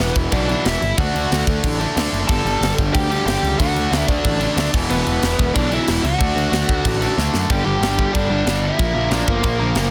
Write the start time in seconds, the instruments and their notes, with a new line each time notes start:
Already playing: distorted electric guitar E2 B2 E3, lead electric guitar B3 B4
0.00 picked electric bass E1
0.15 picked electric bass E1, kick, crash
0.31 picked electric bass B1, distorted electric guitar E2 B2 E3, lead electric guitar D4 D5, kick, crash
0.48 distorted electric guitar E2 B2 E3, crash
0.64 picked electric bass E1, lead electric guitar E4 E5, snare, crash
0.82 picked electric bass G1, crash
0.98 picked electric bass D2, distorted electric guitar D3 A3 D4, lead electric guitar F#4 F#5, kick, crash
1.15 picked electric bass D2, crash
1.32 picked electric bass D2, snare, crash
1.47 picked electric bass D2, kick, crash
1.63 picked electric bass A1, kick, crash
1.79 distorted electric guitar D3 A3 D4, crash
1.95 picked electric bass D2, distorted electric guitar D3 A3 D4, snare, crash
2.12 picked electric bass F#1, crash
2.28 picked electric bass G1, distorted electric guitar G2 D3 G3, lead electric guitar A4 A5, kick, crash
2.45 picked electric bass G1, crash
2.60 picked electric bass G1, snare, crash
2.78 picked electric bass G1, kick, crash
2.93 picked electric bass D2, lead electric guitar G4 G5, kick, crash
3.09 distorted electric guitar G2 D3 G3, crash
3.26 picked electric bass G1, distorted electric guitar G2 D3 G3, lead electric guitar G4 G5, snare, crash
3.43 picked electric bass C#2, crash
3.59 picked electric bass D2, distorted electric guitar D3 A3 D4, lead electric guitar F#4 F#5, kick, crash
3.75 picked electric bass D2, crash
3.91 picked electric bass D2, snare, crash
4.08 picked electric bass D2, lead electric guitar D4 D5, kick, crash
4.25 picked electric bass A1, kick, crash
4.39 distorted electric guitar D3 A3 D4, crash
4.56 picked electric bass D2, distorted electric guitar D3 A3 D4, snare, crash
4.72 picked electric bass E1, distorted electric guitar E2 B2 E3, kick, crash
4.90 picked electric bass E1, lead electric guitar B3 B4, crash
5.07 picked electric bass E1, crash
5.23 picked electric bass E1, snare, crash
5.39 picked electric bass E1, kick, crash
5.54 picked electric bass B1, distorted electric guitar E2 B2 E3, lead electric guitar D4 D5, kick, crash
5.70 distorted electric guitar E2 B2 E3, lead electric guitar E4 E5, crash
5.88 picked electric bass E1, snare, crash
6.04 picked electric bass C#2, lead electric guitar F#4 F#5, crash
6.19 picked electric bass D2, distorted electric guitar D3 A3 D4, kick, crash
6.36 picked electric bass D2, crash
6.52 picked electric bass D2, snare, crash
6.69 picked electric bass D2, kick, crash
6.85 picked electric bass A1, kick, crash
7.00 distorted electric guitar D3 A3 D4, crash
7.17 picked electric bass D2, distorted electric guitar D3 A3 D4, snare
7.34 picked electric bass F#2, snare
7.50 picked electric bass G1, distorted electric guitar G2 D3 G3, lead electric guitar G4 G5, kick, crash
7.64 picked electric bass G1, distorted electric guitar G2 D3 G3, lead electric guitar G4 G5
7.81 picked electric bass G1, distorted electric guitar G2 D3 G3, snare, crash
7.98 distorted electric guitar G2 D3 G3, kick
8.13 picked electric bass G1, distorted electric guitar G2 D3 G3, lead electric guitar D4 D5, kick, crash
8.30 picked electric bass G1, distorted electric guitar G2 D3 G3
8.46 picked electric bass G1, distorted electric guitar G2 D3 G3, snare, crash
8.62 distorted electric guitar G2 D3 G3, lead electric guitar E4 E5
8.78 picked electric bass A#1, distorted electric guitar A#2 F3 A#3, kick, crash
8.94 picked electric bass A#1, distorted electric guitar A#2 F3 A#3
9.11 picked electric bass A#1, distorted electric guitar A#2 F3 A#3, lead electric guitar D4 D5, snare, crash
9.27 picked electric bass G1, distorted electric guitar A#2 F3 A#3, lead electric guitar A#3 A#4, kick
9.43 picked electric bass A#1, distorted electric guitar A#2 F3 A#3, kick, crash
9.59 picked electric bass A#1, distorted electric guitar A#2 F3 A#3
9.75 picked electric bass F#1, distorted electric guitar A#2 F3 A#3, snare, crash